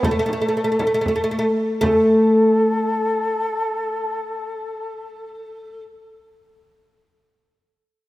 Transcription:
0.03 oud A3, ney A4, frame drum
0.11 oud A3
0.19 oud A3
0.26 oud A3, frame drum
0.33 oud A3
0.42 oud A3
0.48 oud A3
0.57 oud A3
0.64 oud A3
0.72 oud A3
0.79 oud A3, frame drum
0.87 oud A3
0.94 oud A3
1.01 oud A3
1.06 oud A3, frame drum
1.16 oud A3
1.24 oud A3
1.31 oud A3
1.39 oud A3
1.81 oud A3, ney G#4, frame drum
1.95 ney A4

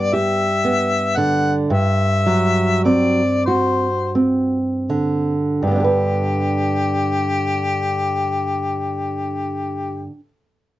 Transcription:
Already playing: nylon-string guitar G2 B3, harmonica D5
0.13 nylon-string guitar G4, harmonica E5
0.65 nylon-string guitar B3
1.17 nylon-string guitar D3, harmonica F#5
1.69 nylon-string guitar G2, harmonica E5
2.26 nylon-string guitar F#3
2.84 nylon-string guitar C4, harmonica D5
3.46 nylon-string guitar F#4, harmonica C5
4.15 nylon-string guitar C4
4.90 nylon-string guitar D3
5.60 nylon-string guitar G2, harmonica G4
5.67 nylon-string guitar D3
5.71 nylon-string guitar B3
5.76 nylon-string guitar D4
5.80 nylon-string guitar G4
5.84 nylon-string guitar B4

